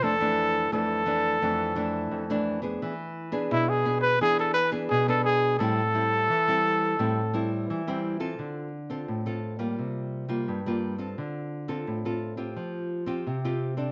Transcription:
<<
  \new Staff \with { instrumentName = "Trumpet" } { \time 4/4 \key a \minor \tempo 4 = 86 a'4 a'2~ a'8 r8 | r4 e'16 gis'8 b'16 gis'16 a'16 b'8 gis'16 a'16 gis'8 | a'2. r4 | \key d \minor r1 |
r1 | }
  \new Staff \with { instrumentName = "Nylon-string guitar" } { \time 4/4 \key a \minor << { <e a d'>16 <e a d'>8. <e a d'>8 <e a d'>8 <e a d'>8 <e a d'>8. <e a d'>8 <b d' gis'>16~ | <b d' gis'>16 r8 <b d' gis'>8. <b d' gis'>8 <b d' gis'>8 r16 <b d' gis'>8 <b d' gis'>8. | <g c' e'>16 r16 <g c' e'>8 r16 <g c' e'>8. <g c' e'>16 r16 <g c' e'>8. <g c' e'>8 <c' f' a'>16~ | \key d \minor <c' f' a'>8 r16 <c' f' a'>8 <c' f' a'>8 <g bes f'>4 <g bes f'>8 <g bes f'>8 <c' f' a'>16~ |
<c' f' a'>8. <c' f' a'>8 <c' f' a'>8 <c' f' g'>4 <c' f' g'>8 <c' f' g'>8 <c' d' a'>16 | } \\ { f,4 f,4 f,4 f,4 | e4 b,4 e4 b,4 | a,4 e4 a,4 e4 | d4 a,4 c4 g,4 |
d4 a,4 f4 c4 | } >> }
>>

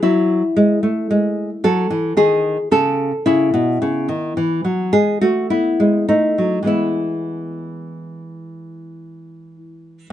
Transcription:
\new Staff \with { instrumentName = "Nylon-string guitar" } { \clef bass \time 3/4 \key e \major \tempo 4 = 53 << { e'4. a'8 gis'8 a'8 | e'4. gis'16 fis'16 e'8 dis'8 | e'2~ e'8 r8 | } \\ { fis8 gis16 a16 gis8 fis16 e16 dis8 cis8 | cis16 b,16 cis16 dis16 e16 fis16 gis16 a16 b16 gis16 a16 fis16 | <e gis b>2. | } >> }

